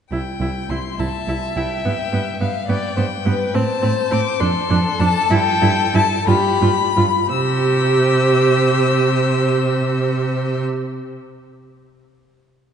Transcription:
0.11 0.19 C2 soft
0.11 0.20 E4 soft
0.11 0.71 G5 medium
0.40 0.48 C2 soft
0.40 0.49 E4 soft
0.70 0.78 C2 soft
0.70 0.79 E4 soft
0.70 1.01 C6 medium
0.99 1.07 C2 soft
0.99 1.08 E4 soft
0.99 2.65 E5 medium
0.99 1.58 A5 medium
1.28 1.36 C2 soft
1.28 1.36 E4 soft
1.56 1.65 C2 soft
1.56 1.65 E4 soft
1.56 1.84 G5 medium
1.84 1.93 G2 soft
1.84 1.93 B3 soft
1.84 2.40 G5 medium
2.13 2.21 G2 soft
2.13 2.21 B3 soft
2.41 2.49 G2 soft
2.41 2.49 B3 soft
2.41 2.71 F5 medium
2.69 2.77 G2 soft
2.69 2.77 B3 soft
2.69 2.96 D5 medium
2.69 3.56 G5 medium
2.97 3.05 G2 medium
2.97 3.05 B3 soft
2.97 3.05 C5 soft
3.26 3.34 G2 medium
3.26 3.34 B3 soft
3.26 3.57 B4 medium
3.54 3.62 A2 medium
3.54 3.62 C4 medium
3.54 4.42 C5 medium
3.54 4.13 A5 medium
3.82 3.91 A2 medium
3.82 3.90 C4 soft
4.11 4.20 A2 medium
4.11 4.19 C4 medium
4.11 4.41 D6 medium
4.40 4.48 F2 medium
4.40 4.48 D4 medium
4.40 6.30 A4 medium
4.40 5.01 C6 medium
4.70 4.78 F2 medium
4.70 4.78 D4 medium
5.00 5.08 F2 medium
5.00 5.08 D4 medium
5.00 5.33 A5 medium
5.30 5.38 G2 medium
5.30 5.38 E4 medium
5.30 5.97 G5 loud
5.62 5.70 G2 medium
5.62 5.70 E4 medium
5.94 6.02 G2 medium
5.94 6.02 E4 medium
5.94 6.27 A5 loud
6.27 6.35 G2 medium
6.27 6.35 F4 medium
6.27 6.80 G4 medium
6.27 7.30 B5 loud
6.61 6.69 G2 medium
6.61 6.70 F4 medium
6.97 7.05 G2 medium
6.97 7.05 F4 medium
7.31 10.63 C3 medium
7.31 10.63 G4 medium
7.31 10.63 C5 medium
7.31 10.63 E6 medium

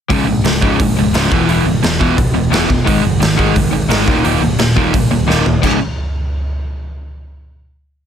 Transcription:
0.09 0.23 C#1 medium
0.09 0.26 C#2 medium
0.09 0.26 G#2 loud
0.09 0.26 C#3 loud
0.09 kick loud
0.09 open hi-hat medium
0.27 0.40 A#1 medium
0.27 0.42 C#2 medium
0.27 0.43 G#2 medium
0.44 0.58 C#1 medium
0.44 0.60 C#2 medium
0.44 0.60 G#2 medium
0.44 snare medium
0.44 open hi-hat medium
0.62 0.75 C#1 medium
0.62 0.78 C#2 medium
0.62 0.79 G#2 medium
0.62 0.79 C#3 medium
0.62 kick medium
0.80 0.93 A#1 medium
0.80 0.95 C#2 medium
0.80 0.95 G#2 medium
0.80 kick loud
0.80 open hi-hat medium
0.96 1.10 C#1 medium
0.96 1.12 C#2 medium
0.96 1.12 G#2 medium
1.13 1.27 C#1 medium
1.13 1.30 C#2 medium
1.13 1.30 G#2 loud
1.13 1.31 C#3 loud
1.13 snare loud
1.13 open hi-hat medium
1.31 1.45 E1 medium
1.31 1.47 E2 loud
1.31 1.48 B2 medium
1.31 1.48 E3 medium
1.31 kick loud
1.49 1.62 E1 medium
1.49 1.65 E2 loud
1.49 1.65 B2 medium
1.49 1.66 E3 loud
1.49 open hi-hat soft
1.66 1.79 C#1 medium
1.66 1.82 E2 medium
1.66 1.82 B2 medium
1.83 1.96 E1 medium
1.83 1.98 E2 medium
1.83 1.99 B2 medium
1.83 snare loud
1.83 open hi-hat medium
2.00 2.14 E1 medium
2.00 2.16 E2 medium
2.00 2.16 B2 loud
2.00 2.17 E3 medium
2.00 kick medium
2.17 2.31 C#1 medium
2.17 2.32 E2 medium
2.17 2.33 B2 medium
2.17 kick loud
2.17 open hi-hat soft
2.34 2.48 E1 medium
2.34 2.49 E2 medium
2.34 2.50 B2 medium
2.50 2.65 E1 medium
2.50 2.67 E2 loud
2.50 2.68 B2 loud
2.50 2.68 E3 loud
2.50 snare loud
2.50 open hi-hat soft
2.69 2.83 E1 medium
2.69 2.84 E2 medium
2.69 2.85 B2 medium
2.69 kick medium
2.84 3.00 G#1 medium
2.84 3.01 G#2 medium
2.84 3.01 D#3 loud
2.84 3.03 G#3 loud
2.84 kick loud
2.84 open hi-hat medium
3.02 3.18 F#1 loud
3.02 3.19 G#2 medium
3.02 3.19 D#3 medium
3.20 3.35 G#1 medium
3.20 3.35 G#2 medium
3.20 3.36 D#3 medium
3.20 snare loud
3.20 open hi-hat medium
3.36 3.52 G#1 medium
3.36 3.53 G#2 medium
3.36 3.53 D#3 medium
3.36 3.54 G#3 medium
3.36 kick medium
3.54 3.69 F#1 medium
3.54 3.70 G#2 medium
3.54 3.70 D#3 medium
3.54 kick loud
3.54 open hi-hat medium
3.71 3.86 G#1 medium
3.71 3.88 G#2 medium
3.71 3.88 D#3 medium
3.89 4.03 G#1 loud
3.89 4.06 G#2 loud
3.89 4.06 D#3 loud
3.89 4.06 G#3 loud
3.89 snare loud
3.89 open hi-hat medium
4.06 4.21 D#1 medium
4.06 4.23 D#2 medium
4.06 4.23 A#2 loud
4.06 4.24 D#3 medium
4.06 kick medium
4.24 4.38 D#1 medium
4.24 4.40 D#2 medium
4.24 4.40 A#2 loud
4.24 4.41 D#3 medium
4.24 open hi-hat medium
4.41 4.55 C#1 medium
4.41 4.57 D#2 medium
4.41 4.57 A#2 medium
4.58 4.72 D#1 medium
4.58 4.75 D#2 medium
4.58 4.75 A#2 medium
4.58 snare loud
4.58 open hi-hat soft
4.76 4.90 D#1 medium
4.76 4.91 D#2 loud
4.76 4.92 A#2 loud
4.76 4.93 D#3 loud
4.76 kick medium
4.93 5.07 C#1 medium
4.93 5.09 D#2 medium
4.93 5.09 A#2 medium
4.93 kick loud
4.93 open hi-hat medium
5.11 5.24 D#1 medium
5.11 5.26 D#2 medium
5.11 5.26 A#2 medium
5.27 5.41 D#1 medium
5.27 5.44 D#2 medium
5.27 5.44 A#2 loud
5.27 5.44 D#3 loud
5.27 snare medium
5.46 5.59 D#1 medium
5.46 5.61 D#2 medium
5.46 5.61 A#2 medium
5.46 floor tom medium
5.62 5.79 C#1 medium
5.62 5.76 C#2 loud
5.62 5.76 G#2 loud
5.62 5.77 C#3 loud
5.62 kick medium
5.62 crash medium

